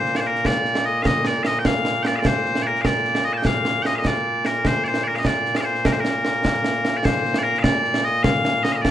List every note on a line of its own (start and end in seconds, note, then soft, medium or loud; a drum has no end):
0.00 8.91 A#2 medium
0.00 8.91 A#3 medium
0.00 0.16 C5 loud
0.06 snare soft
0.15 0.20 D5 medium
0.15 snare medium
0.20 0.27 C5 medium
0.27 0.46 A#4 loud
0.35 snare soft
0.45 0.85 D5 medium
0.45 concert bass drum soft
0.45 snare medium
0.65 snare soft
0.75 snare medium
0.85 1.02 D#5 medium
1.02 1.26 D#5 loud
1.02 1.06 F5 loud
1.02 concert bass drum medium
1.02 snare loud
1.25 1.43 D5 medium
1.25 snare medium
1.43 1.59 D#5 loud
1.43 1.46 F5 loud
1.43 snare medium
1.59 1.66 G5 medium
1.65 2.03 F5 loud
1.65 concert bass drum medium
1.65 snare loud
1.85 snare medium
2.03 2.16 D5 medium
2.03 2.07 G5 medium
2.03 snare medium
2.16 2.26 D5 medium
2.16 2.19 F5 medium
2.25 2.62 C5 medium
2.25 concert bass drum medium
2.25 snare loud
2.45 snare soft
2.55 snare medium
2.62 2.67 D5 medium
2.67 2.81 A#4 medium
2.75 snare soft
2.81 2.85 F5 medium
2.81 concert bass drum soft
2.81 snare medium
2.85 3.24 D5 medium
3.05 snare soft
3.15 snare medium
3.24 3.33 D#5 medium
3.33 3.37 A5 medium
3.37 3.47 G5 medium
3.45 3.83 F5 loud
3.45 concert bass drum medium
3.45 snare medium
3.65 snare medium
3.83 3.95 D#5 loud
3.83 3.86 G5 loud
3.83 snare medium
3.95 4.07 D#5 medium
3.95 3.99 F5 medium
4.05 4.46 D5 medium
4.05 concert bass drum soft
4.05 snare medium
4.45 4.67 A#4 medium
4.45 snare medium
4.65 4.84 C5 medium
4.65 concert bass drum medium
4.65 snare medium
4.84 5.04 C5 medium
4.84 4.88 D5 medium
4.84 snare soft
4.94 snare medium
5.04 5.15 A#4 medium
5.04 5.07 D5 medium
5.14 5.19 F5 medium
5.14 snare soft
5.19 5.26 D#5 medium
5.25 5.56 D5 medium
5.25 concert bass drum soft
5.25 snare medium
5.45 snare soft
5.55 5.60 F5 medium
5.55 snare medium
5.60 5.65 D5 medium
5.65 5.86 C5 medium
5.75 snare soft
5.85 5.92 A#4 medium
5.85 concert bass drum medium
5.85 snare loud
5.92 6.00 C5 medium
6.00 6.97 A#4 medium
6.05 snare medium
6.25 snare medium
6.45 concert bass drum medium
6.45 snare medium
6.64 snare medium
6.85 snare medium
6.97 7.05 D5 medium
7.05 7.38 C5 medium
7.05 concert bass drum medium
7.05 snare loud
7.25 snare soft
7.34 snare medium
7.38 7.43 D5 medium
7.43 7.59 A#4 medium
7.55 snare soft
7.59 8.04 D5 medium
7.59 7.63 F5 medium
7.64 concert bass drum medium
7.64 snare medium
7.84 snare soft
7.94 snare medium
8.04 8.23 D#5 loud
8.23 8.63 F5 loud
8.23 concert bass drum medium
8.23 snare loud
8.45 snare medium
8.63 8.72 D#5 loud
8.63 snare medium
8.72 8.81 D#5 medium
8.72 8.76 F5 medium
8.81 8.91 D5 loud
8.81 concert bass drum medium
8.81 snare medium